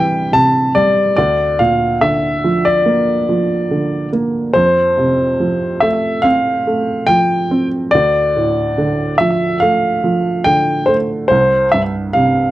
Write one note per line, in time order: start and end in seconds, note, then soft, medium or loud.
0.00 1.13 C2 medium
0.00 1.18 G2 soft
0.00 0.28 C3 soft
0.00 1.18 E3 medium
0.00 0.74 G3 medium
0.00 0.30 G5 medium
0.32 1.14 C3 soft
0.32 0.72 A5 medium
0.75 1.16 G3 soft
0.75 1.15 D5 medium
1.16 4.51 D2 medium
1.16 1.60 D5 medium
1.59 3.24 A#2 soft
1.59 1.98 F5 medium
2.01 3.66 D3 soft
2.01 2.66 E5 medium
2.44 3.27 F3 medium
2.65 4.08 D5 medium
2.86 4.11 A#3 soft
3.29 4.51 F3 soft
3.71 4.52 D3 soft
4.13 4.53 A#3 soft
4.54 7.89 F2 medium
4.54 5.84 C5 medium
4.97 6.62 C3 soft
5.40 7.04 F3 soft
5.80 6.66 A3 medium
5.80 6.24 E5 medium
6.22 7.50 C4 soft
6.22 7.10 F5 medium
6.67 7.89 A3 soft
7.07 7.90 F3 soft
7.07 7.67 G5 medium
7.51 7.92 C4 soft
7.91 11.27 D2 medium
7.91 9.14 D5 medium
8.36 10.00 A2 soft
8.78 10.42 D3 soft
9.18 10.02 F3 medium
9.18 9.58 E5 medium
9.60 10.86 A3 medium
9.60 10.48 F5 medium
10.04 11.27 F3 soft
10.44 11.28 D3 soft
10.44 10.89 G5 medium
10.86 11.29 A3 soft
10.86 10.96 C5 medium
11.28 12.51 C2 medium
11.28 11.68 C5 medium
11.72 12.51 G2 soft
11.72 11.81 E5 medium
12.13 12.51 C3 soft
12.13 12.51 F5 medium